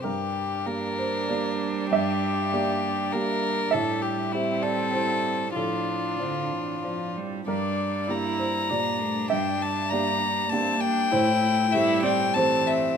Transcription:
<<
  \new Staff \with { instrumentName = "Violin" } { \time 3/4 \key g \dorian \tempo 4 = 97 g'4 bes'2 | g'2 bes'4 | a'8 g'8 e'8 a'4. | f'2~ f'8 r8 |
d''4 bes''2 | g''8 a''8 bes''4 a''8 g''8~ | g''4 e''8 g''8 a''8 e''8 | }
  \new Staff \with { instrumentName = "Upright piano" } { \time 3/4 \key g \dorian << { bes'4. c''8 d''4 | e''4 d''4. r8 | e''4. d''8 c''4 | a'2~ a'8 r8 |
bes'4. c''8 d''4 | e''4 d''4. r8 | c''4. d''8 c''4 | } \\ { g,4 <bes g'>4 <bes g'>4 | g,4 <bes g'>4 <bes g'>4 | a,4 <c' e' g'>4 <c' e' g'>4 | a,4 <c' d' f''>4 <c' d' f'>4 |
g,4 <bes d' g'>4 <bes, d' g'>4 | g,4 <bes d' g'>4 <bes d' g'>4 | a,4 <a c' g'>4 <a c' g'>4 | } >> }
  \new Staff \with { instrumentName = "Viola" } { \time 3/4 \key g \dorian d'2.~ | d'2.~ | d'4 c'2 | d'2~ d'8 r8 |
d'4 e'4 d'4~ | d'2 c'8 d'8 | e'4 e'8 c'8 c'4 | }
  \new Staff \with { instrumentName = "Cello" } { \clef bass \time 3/4 \key g \dorian g2.~ | g2. | g2. | f4 d8 e8 f8 g8 |
g2 bes8 a8 | g8 g4. bes4 | a4 g4 e4 | }
>>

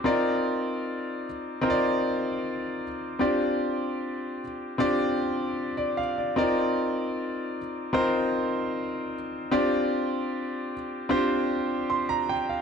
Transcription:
\new Staff \with { instrumentName = "Grand piano" } { \time 4/4 \key c \minor \tempo 4 = 76 << { r1 | r2. r16 d''16 f''16 d''16~ | d''16 r2. r8. | r2. c'''16 bes''16 g''16 f''16 | } \\ { <c' ees' f' bes' d''>4. r8 <c' ees' f' bes' c'' d''>4. r8 | <c' d' f' g' d''>4. r8 <c' d' f' g' d''>4. r8 | <c' ees' f' bes' d''>4. r8 <c' ees' f' bes' c''>4. r8 | <c' d' f' g' d''>4. r8 <c' d' f' g' c''>4. r8 | } >> }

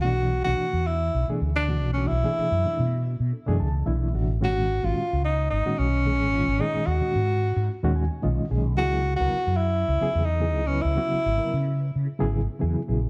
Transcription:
<<
  \new Staff \with { instrumentName = "Tenor saxophone" } { \time 4/4 \key ces \major \tempo 4 = 110 fis'8. fis'8. e'8. r8 d'8. cis'16 e'16~ | e'4.~ e'16 r2 r16 | ges'8. f'8. ees'8 ees'8 des'4. | ees'8 ges'2 r4. |
ges'8. ges'8. fes'4~ fes'16 ees'8. des'16 fes'16~ | fes'4.~ fes'16 r2 r16 | }
  \new Staff \with { instrumentName = "Reed electric piano" } { \time 4/4 \key ces \major << { r1 | r2 r8 a''8 e''4 | r1 | r2 r8 aes''8 ees''4 |
r1 | r1 | } \\ { <b, e a d' fis'>8 r16 <b, e a d' fis'>16 r16 <d' e'>16 <d' fis'>16 r16 <d' fis'>16 <b, e a d' aes'>16 r16 <d' fis'>16 <b, e a d' fis'>16 r16 <b, e a d' fis'>16 r16 | <b, e a d' aes'>8 r16 <b, e a d' e'>16 r16 <d' fis'>16 <d' fis'>16 r16 <d' a'>16 <b, e a d' aes'>16 r16 <d' aes'>16 <b, e a d' e'>16 r16 <b, e a d' fis'>16 r16 | <bes, ees aes des' ges'>8 r16 <bes, ees aes des' ges'>16 r16 <des' ges'>16 <des' ees'>16 r16 <des' ees'>16 <bes, ees aes des' ges'>16 r16 <des' ges'>16 <bes, ees aes des' aes'>16 r16 <bes, ees aes des' f'>16 r16 | <bes, ees aes des' aes'>8 r16 <bes, ees aes des' ges'>16 r16 <des' f'>16 <des' f'>16 r16 <des' f'>16 <bes, ees aes des' ges'>16 r16 <des' ges'>16 <bes, ees aes des' f'>16 r16 <bes, ees aes des' aes'>16 r16 |
<des ges ces' fes' aes'>8 r16 <des ges ces' fes' bes'>16 r16 <fes' aes'>16 <fes' aes'>16 r16 <fes' ces''>16 <des ges ces' fes' aes'>16 r16 <fes' aes'>16 <des ges ces' fes' aes'>16 r16 <des ges ces' fes' ces''>16 r16 | <des ges ces' fes' ges'>8 r16 <des ges ces' fes' bes'>16 r16 <fes' ges'>16 <fes' ces''>16 r16 <fes' aes'>16 <des ges ces' fes' aes'>16 r16 <fes' aes'>16 <des ges ces' fes' aes'>16 r16 <des ges ces' fes' aes'>16 r16 | } >> }
  \new Staff \with { instrumentName = "Fretless electric bass" } { \clef bass \time 4/4 \key ces \major b,,8. b,,16 r16 e,8. b,,16 r16 d,8. b,,8 b,,16 | r8 fis,16 r16 b,8. b,16 r16 fis,16 cis,8 b,,8 a,,8 | aes,,8. aes,,16 r16 des,8. aes,,16 r16 ces,8. aes,,8 aes,,16 | r8 ees,16 r16 aes,8. aes,16 r16 ees,8 r16 ces,16 r16 ces,8 |
des,8. des,16 r16 ges,8. des,16 r16 fes,8. des,8 des,16 | r8 aes,,16 r16 des8. des16 r16 aes,,8 r16 fes,16 r16 bes,,8 | }
>>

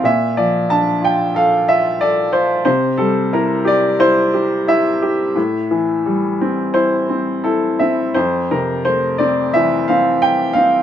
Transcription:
\new Staff \with { instrumentName = "Upright piano" } { \time 4/4 \key f \major \tempo 4 = 88 << { e''8 d''8 a''8 g''8 f''8 e''8 d''8 c''8 | c''8 a'8 bes'8 d''8 c''4 e''4~ | e''2 c''4 a'8 e''8 | c''8 bes'8 c''8 d''8 e''8 f''8 g''8 f''8 | } \\ { bes,8 f8 d'8 f'8 a'8 f'8 a'8 f'8 | c8 g8 e'8 g'8 e'8 g'8 e'8 g'8 | a,8 e8 g8 c'8 e'8 c'8 e'8 c'8 | f,8 c8 a8 c'8 e8 c'4 c'8 | } >> }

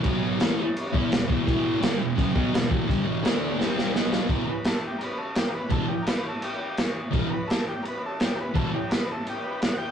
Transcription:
<<
  \new Staff \with { instrumentName = "Transistor combo organ" } { \time 4/4 \key e \minor \tempo 4 = 169 r1 | r1 | r1 | r8 <ais' b'>8 a'8 g'8 <ais' b'>8 a'8 g'8 <ais' b'>8 |
a'8 g'8 <ais' b'>8 a'8 g'8 g'8 r4 | r8 <ais' b'>8 a'8 g'8 <ais' b'>8 a'8 g'8 <ais' b'>8 | a'8 g'8 <ais' b'>8 a'8 g'8 <g' b'>8 r8 <fis'' g''>8 | }
  \new Staff \with { instrumentName = "Distorted electric guitar" } { \clef bass \time 4/4 \key e \minor <b, fis b>4 <a, e a>8 r4 <e b e'>8 <e, b,>8 <e, b, e>8 | <e, b, e>4 <g, d g>8 <e, b,>8 <fis, cis fis>8 <b, fis b>8 <e, b,>8 <e, b, e>8 | <g, d g>8 <e, b, e>8 <d a d'>4 <c g c'>4 <b, fis b>4 | <e, b, e>8 r2. r8 |
<e, b, e>8 r2. r8 | <e, b, e>8 r2. r8 | <e, b, e>8 r2. r8 | }
  \new DrumStaff \with { instrumentName = "Drums" } \drummode { \time 4/4 <cymc bd>4 <cymc sn>4 cymc8 bd8 <cymc sn>8 bd8 | <cymc bd>4 <cymc sn>4 <cymc bd>8 bd8 <cymc sn>8 bd8 | <cymc bd>4 <cymc sn>4 sn8 sn8 sn8 sn8 | <cymc bd>4 <cymc sn>4 cymc4 <cymc sn>4 |
<cymc bd>4 <cymc sn>4 cymc4 <cymc sn>4 | <cymc bd>4 <cymc sn>4 cymc4 <cymc sn>4 | <cymc bd>4 <cymc sn>4 cymc4 <cymc sn>4 | }
>>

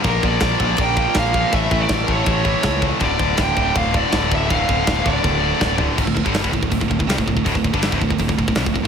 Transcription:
<<
  \new Staff \with { instrumentName = "Lead electric guitar" } { \time 4/4 \key d \minor \tempo 4 = 162 bes'8 d''4. g''4 f''4 | e''8. d''8~ d''32 bes'32 cis''8 cis''4. r8 | d''4 g''4 f''8 d''4 e''8 | f''4. d''2 r8 |
r1 | r1 | }
  \new Staff \with { instrumentName = "Distorted electric guitar" } { \clef bass \time 4/4 \key d \minor <bes, f bes>8 <bes, f bes>8 <bes, f bes>8 <bes, f bes>8 <bes, f bes>8 <bes, f bes>8 <bes, f bes>8 <bes, f bes>8 | <a, e a>8 <a, e a>8 <a, a>8 <a, e a>8 <a, e a>8 <a, e a>8 <a, e a>8 <a, e a>8 | <d, a, d>8 <d, a, d>8 <d, a, d>8 <d, a, d>8 <d, a, d>8 <d, a, d>8 <d, a, d>8 <d, a, d>8 | <d, a, d>8 <d, a, d>8 <d, a, d>8 <d, a, d>8 <d, a, d>8 <d, a, d>8 <d, a, d>8 <d, a, d>8 |
<d, a,>16 <d, a,>16 <d, a,>16 <g, d g>8 <d, a,>16 <d, a,>16 <d, a,>16 <d, a,>16 <d, a,>16 <d, a,>16 <d, a,>16 <c g>16 <d, a,>16 <d, a,>16 <d, a,>16 | <d, a,>16 <d, a,>16 <d, a,>16 <g, d g>8 <d, a,>16 <d, a,>16 <d, a,>16 <d, a,>16 <d, a,>16 <d, a,>16 <d, a,>16 <c g>16 <d, a,>16 <d, a,>16 <d, a,>16 | }
  \new Staff \with { instrumentName = "Distorted electric guitar" } { \clef bass \time 4/4 \key d \minor <bes, f bes>8 <bes, f bes>8 <bes, f bes>8 <bes, f bes>8 <bes, f bes>8 <bes, f bes>8 <bes, f bes>8 <bes, f bes>8 | <a, e a>8 <a, e a>8 <a, e a>8 <a, e a>8 <a, e a>8 <a, e a>8 <a, e a>8 <a, e a>8 | <d, a, d>8 <d, a, d>8 <d, a, d>8 <d, a, d>8 <d, a, d>8 <d, a, d>8 <d, a, d>8 <d, a, d>8 | <d, a, d>8 <d, a, d>8 <d, a, d>8 <d, a, d>8 <d, a, d>8 <d, a, d>8 <d, a, d>8 <d, a, d>8 |
<d, a,>16 <d, a,>16 <d, a,>16 <g, d g>8 <d, a,>16 <d, a,>16 <d, a,>16 <d, a,>16 <d, a,>16 <d, a,>16 <d, a,>16 <c g>16 <d, a,>16 <d, a,>16 <d, a,>16 | <d, a,>16 <d, a,>16 <d, a,>16 <g, d g>8 <d, a,>16 <d, a,>16 <d, a,>16 <d, a,>16 <d, a,>16 <d, a,>16 <d, a,>16 <c g>16 <d, a,>16 <d, a,>16 r16 | }
  \new Staff \with { instrumentName = "Picked electric bass" } { \clef bass \time 4/4 \key d \minor bes,,8 bes,,8 bes,,8 bes,,8 bes,,4 bes,,4 | a,,8 a,,8 a,,8 a,,8 a,,4 cis,4 | d,,8 d,,8 d,,8 d,,8 d,,4 d,,4 | d,,8 d,,8 d,,8 d,,8 d,,4 d,,4 |
d,,16 d,,16 d,,16 g,,8 d,,16 d,,16 d,,16 d,,16 d,,16 d,,16 d,,16 c,16 d,,16 d,,16 d,,16 | d,,16 d,,16 d,,16 g,,8 d,,16 d,,16 d,,16 d,,16 d,,16 d,,16 d,,16 c,16 d,,16 d,,16 r16 | }
  \new DrumStaff \with { instrumentName = "Drums" } \drummode { \time 4/4 <cymc bd>8 bd8 <cymc bd sn>8 bd8 <cymc bd>8 bd8 <cymc bd sn>8 bd8 | <cymc bd>8 bd8 <cymc bd sn>8 bd8 <cymc bd>8 bd8 <cymc bd sn>8 bd8 | <cymc bd>8 bd8 <cymc bd sn>8 bd8 <cymc bd>8 bd8 <cymc bd sn>8 bd8 | <cymc bd>8 bd8 <cymc bd sn>8 bd8 <bd tommh>4 <bd sn>8 tomfh8 |
<cymc bd>16 bd16 bd16 bd16 <hho sn>16 bd16 bd16 bd16 <hho bd>16 bd16 bd16 bd16 <hho sn>16 bd16 bd16 bd16 | <hho bd>16 bd16 bd16 bd16 <hho sn>16 bd16 bd16 bd16 <hho bd>16 bd16 bd16 bd16 <hho sn>16 bd16 bd8 | }
>>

